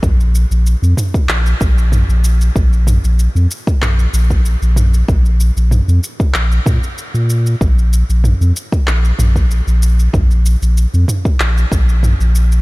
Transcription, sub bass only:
X:1
M:4/4
L:1/16
Q:1/4=95
K:Cphr
V:1 name="Sub bass" clef=bass
B,,,3 B,,,2 F,, z2 B,,,2 B,,,3 B,,,3 | B,,,3 B,,,2 F,, z2 B,,,2 B,,,3 B,,,3 | B,,,3 B,,,2 F,, z2 B,,,2 B,, z2 B,,3 | B,,,3 B,,,2 F,, z2 B,,,2 B,,,3 B,,,3 |
B,,,3 B,,,2 F,, z2 B,,,2 B,,,3 B,,,3 |]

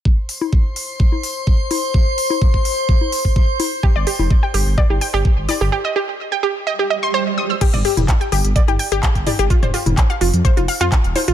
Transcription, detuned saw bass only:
X:1
M:4/4
L:1/16
Q:1/4=127
K:Cdor
V:1 name="Detuned saw bass" clef=bass
z16 | z16 | z G,,, z F,,, z2 G,,, G,,, z G,,, z G,,, z G,,, z G,,, | z16 |
z G,,, z F,,, z2 G,,, G,,, z G,,, z G,,, z G,,, z G,,, | z F,,, z F,,, z2 F,,, F,, z F,,, z F,, z E,,, z A,,, |]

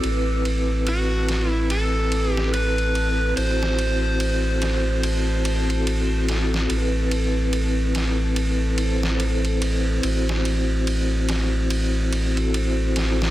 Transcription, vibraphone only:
X:1
M:4/4
L:1/16
Q:"Swing 16ths" 1/4=72
K:Ador
V:1 name="Vibraphone"
[CEAB]8- [CEAB]2 [CEAB]6 | [CEFc] z8 z2 [CEFA]4- [CEFA] | [CEAB]8- [CEAB]2 [CEAc]6 | [CEFc] z8 z2 [CEFA] [CEFc]4 |]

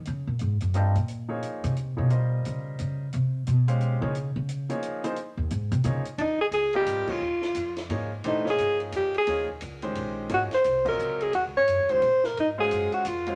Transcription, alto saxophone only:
X:1
M:3/4
L:1/16
Q:"Swing" 1/4=175
K:Dblyd
V:1 name="Alto saxophone"
z12 | z12 | z12 | z12 |
z12 | z8 z3 z/2 =D/2 | [K:Ebmix] E2 A2 A2 G4 F2- | F6 z6 |
E2 A4 z2 G2 A2- | A2 z8 z2 | _G2 c4 B4 A2 | _G2 d4 c4 B2 |
E2 A4 _G2 F4 |]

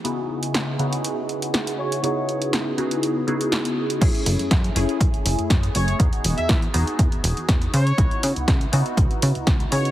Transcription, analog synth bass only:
X:1
M:4/4
L:1/16
Q:1/4=121
K:C#m
V:1 name="Analog synth bass" clef=bass
z16 | z16 | F,, z F,,, F,, F,, z F,,, z F,, F,,, F,,, F,, F,, z F,,, z | E,, E,,, E,,, E,, E,, z E,,, z E,, E,,, E,,, E,, E,, z C, z |
C,, z C, C,, C,, z C, z C,, C, C, C,, C,, z C, z |]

